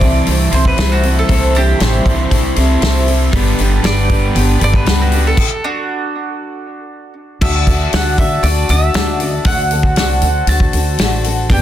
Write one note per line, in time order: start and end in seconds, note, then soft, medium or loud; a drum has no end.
0.00 0.21 C2 medium
0.00 1.27 C3 medium
0.00 1.28 E3 loud
0.00 0.55 G3 medium
0.00 0.28 C4 medium
0.00 3.29 E4 medium
0.00 0.28 E4 medium
0.00 0.27 A4 medium
0.00 0.51 C5 medium
0.00 3.29 C5 medium
0.00 0.51 D5 loud
0.00 1.27 A5 medium
0.00 kick medium
0.00 open hi-hat medium
0.05 0.26 A3 soft
0.27 0.50 C2 loud
0.27 0.53 A3 medium
0.27 0.53 C4 medium
0.27 0.52 E4 medium
0.27 open hi-hat medium
0.31 0.51 A4 medium
0.52 0.75 C2 medium
0.52 0.76 G3 medium
0.52 0.77 A3 soft
0.52 0.77 C4 medium
0.52 0.78 E4 medium
0.52 0.78 A4 medium
0.52 0.79 C5 medium
0.52 0.65 C5 medium
0.52 open hi-hat medium
0.65 0.91 B4 medium
0.65 kick medium
0.77 1.23 C2 medium
0.77 1.03 C3 medium
0.77 1.04 G3 medium
0.77 1.04 A3 medium
0.77 1.03 C4 medium
0.77 1.02 E4 medium
0.77 1.01 A4 medium
0.77 1.30 C5 medium
0.77 snare loud
0.77 open hi-hat medium
0.92 1.16 F#4 medium
1.02 1.29 A3 soft
1.02 1.29 C4 soft
1.02 1.29 E4 medium
1.02 1.29 A4 medium
1.02 open hi-hat medium
1.19 1.55 A4 medium
1.28 1.74 C2 loud
1.28 1.55 C3 medium
1.28 1.79 E3 loud
1.28 1.55 G3 medium
1.28 1.55 A3 medium
1.28 1.55 C4 medium
1.28 1.54 E4 medium
1.28 1.54 A4 medium
1.28 1.81 C5 loud
1.28 3.31 B5 medium
1.28 kick loud
1.28 open hi-hat medium
1.55 1.80 A3 medium
1.55 1.80 C4 medium
1.55 3.05 D4 medium
1.55 1.80 E4 medium
1.55 3.05 G4 medium
1.55 1.80 A4 medium
1.55 open hi-hat medium
1.80 2.03 A1 loud
1.80 2.06 C3 medium
1.80 2.31 E3 medium
1.80 2.06 G3 medium
1.80 2.06 A3 loud
1.80 2.06 C4 medium
1.80 2.05 E4 medium
1.80 2.04 A4 medium
1.80 2.03 C5 loud
1.80 snare loud
1.80 open hi-hat medium
2.04 2.28 C2 medium
2.04 2.58 G3 medium
2.04 2.29 A3 soft
2.04 2.30 C4 soft
2.04 2.31 E4 medium
2.04 2.31 A4 medium
2.04 2.55 C5 medium
2.04 kick medium
2.04 open hi-hat medium
2.30 2.54 C2 medium
2.30 2.56 A3 medium
2.30 2.57 C4 medium
2.30 2.56 E4 medium
2.30 2.55 A4 medium
2.30 kick medium
2.30 open hi-hat medium
2.56 2.79 C2 loud
2.56 2.80 G3 medium
2.56 2.81 A3 medium
2.56 2.82 C4 medium
2.56 2.82 E4 medium
2.56 2.82 A4 medium
2.56 2.83 C5 medium
2.56 open hi-hat medium
2.81 3.27 C2 medium
2.81 3.07 C3 medium
2.81 3.08 G3 medium
2.81 3.08 A3 medium
2.81 3.07 C4 medium
2.81 3.06 E4 loud
2.81 3.05 A4 loud
2.81 3.33 C5 medium
2.81 snare loud
2.81 open hi-hat medium
3.06 3.33 A3 medium
3.06 3.34 C4 soft
3.06 3.33 E4 medium
3.06 3.33 A4 medium
3.06 open hi-hat medium
3.33 3.56 G1 loud
3.33 3.59 G3 loud
3.33 3.59 B3 medium
3.33 3.59 D4 medium
3.33 3.59 G4 loud
3.33 5.36 G4 medium
3.33 3.57 A4 medium
3.33 3.85 B4 medium
3.33 5.37 B4 medium
3.33 5.37 A5 medium
3.33 kick loud
3.33 open hi-hat medium
3.59 3.81 G1 medium
3.59 3.84 D4 medium
3.59 3.84 G4 medium
3.59 3.84 A4 medium
3.59 open hi-hat medium
3.84 4.29 G1 loud
3.84 4.10 G3 medium
3.84 4.10 B3 medium
3.84 4.10 D4 loud
3.84 4.11 G4 medium
3.84 4.08 A4 medium
3.84 4.07 B4 loud
3.84 4.59 D5 loud
3.84 snare loud
3.84 open hi-hat medium
4.08 4.60 B3 medium
4.08 4.36 G4 medium
4.08 4.35 A4 medium
4.08 4.58 B4 medium
4.08 kick medium
4.08 open hi-hat medium
4.13 4.35 D4 medium
4.35 4.58 G1 loud
4.35 4.61 B3 medium
4.35 4.61 D4 medium
4.35 4.61 G4 medium
4.35 4.59 A4 medium
4.35 open hi-hat medium
4.59 4.84 G1 loud
4.59 4.87 B3 medium
4.59 4.86 D4 soft
4.59 4.86 G4 medium
4.59 4.86 A4 medium
4.59 4.88 B4 medium
4.59 open hi-hat medium
4.64 4.74 D5 loud
4.74 4.99 B4 medium
4.74 kick medium
4.86 5.32 C#2 medium
4.86 5.12 G3 medium
4.86 5.12 B3 medium
4.86 5.12 D4 medium
4.86 5.12 G4 medium
4.86 5.11 A4 medium
4.86 5.37 B4 medium
4.86 snare loud
4.86 open hi-hat medium
5.01 5.25 F#4 medium
5.12 5.39 D4 soft
5.12 5.39 G4 soft
5.12 5.38 A4 medium
5.12 open hi-hat medium
5.27 5.63 A4 loud
5.37 kick loud
5.37 crash loud
5.64 7.13 D4 medium
5.64 7.13 F#4 medium
7.41 7.64 D2 loud
7.41 7.68 D3 medium
7.41 7.68 A3 medium
7.41 7.68 D4 medium
7.41 7.68 F#4 medium
7.41 11.47 F#4 medium
7.41 7.67 A4 medium
7.41 9.45 D5 medium
7.41 7.95 E5 medium
7.41 11.62 A5 medium
7.41 kick loud
7.41 crash loud
7.67 7.90 D2 medium
7.67 7.93 F#4 medium
7.67 7.93 A4 medium
7.67 kick medium
7.67 open hi-hat soft
7.71 7.93 D4 soft
7.93 8.38 D2 medium
7.93 8.18 D3 medium
7.93 8.19 A3 medium
7.93 8.19 D4 medium
7.93 8.18 F#4 medium
7.93 8.17 A4 loud
7.93 8.18 F#5 medium
7.93 snare loud
7.93 open hi-hat medium
8.18 8.43 D4 soft
8.18 8.44 F#4 soft
8.18 8.44 A4 medium
8.18 8.45 E5 medium
8.18 kick medium
8.18 open hi-hat medium
8.43 8.66 D2 medium
8.43 8.69 A3 medium
8.43 8.70 D4 medium
8.43 8.70 F#4 medium
8.43 8.69 A4 medium
8.43 8.70 D5 medium
8.43 open hi-hat medium
8.69 8.92 D2 medium
8.69 8.95 D4 soft
8.69 8.96 F#4 medium
8.69 8.95 A4 medium
8.69 9.49 E5 loud
8.69 open hi-hat medium
8.94 9.40 D2 medium
8.94 9.20 D3 medium
8.94 9.21 A3 medium
8.94 9.21 D4 medium
8.94 9.20 F#4 medium
8.94 9.19 A4 medium
8.94 snare loud
8.94 open hi-hat medium
9.20 9.46 D4 soft
9.20 9.47 F#4 soft
9.20 9.46 A4 medium
9.20 open hi-hat medium
9.45 9.91 D2 loud
9.45 9.72 D3 medium
9.45 9.72 A3 medium
9.45 9.72 D4 medium
9.45 9.72 F#4 medium
9.45 9.71 A4 medium
9.45 11.48 C5 medium
9.45 9.97 F#5 loud
9.45 kick loud
9.45 open hi-hat medium
9.71 9.97 F#4 medium
9.71 9.97 A4 medium
9.71 open hi-hat medium
9.75 9.97 D4 medium
9.83 kick medium
9.96 10.19 C2 medium
9.96 10.23 D3 medium
9.96 10.23 A3 medium
9.96 10.23 D4 medium
9.96 10.23 F#4 medium
9.96 10.22 A4 loud
9.96 10.48 F#5 loud
9.96 snare loud
9.96 open hi-hat medium
10.22 10.45 D2 medium
10.22 10.49 F#4 medium
10.22 10.48 A4 medium
10.22 open hi-hat medium
10.26 10.47 D4 soft
10.47 10.70 D2 loud
10.47 10.73 A3 medium
10.47 10.74 D4 medium
10.47 10.74 F#4 medium
10.47 10.72 A4 medium
10.47 11.21 A5 loud
10.47 open hi-hat medium
10.60 kick medium
10.73 10.96 D2 loud
10.73 11.00 D4 soft
10.73 11.00 F#4 medium
10.73 10.99 A4 medium
10.73 open hi-hat medium
10.98 11.51 A1 medium
10.98 11.25 D3 medium
10.98 11.25 A3 medium
10.98 11.26 D4 medium
10.98 11.25 F#4 loud
10.98 snare loud
10.98 open hi-hat medium
11.02 11.23 A4 medium
11.24 11.50 D4 medium
11.24 11.51 F#4 medium
11.24 11.50 A4 medium
11.24 open hi-hat medium
11.49 11.62 G1 loud
11.49 11.62 G3 medium
11.49 11.62 B3 medium
11.49 11.62 D4 medium
11.49 11.62 G4 medium
11.49 11.62 A4 loud
11.49 11.62 B4 medium
11.49 11.62 G5 loud
11.49 kick loud
11.49 open hi-hat medium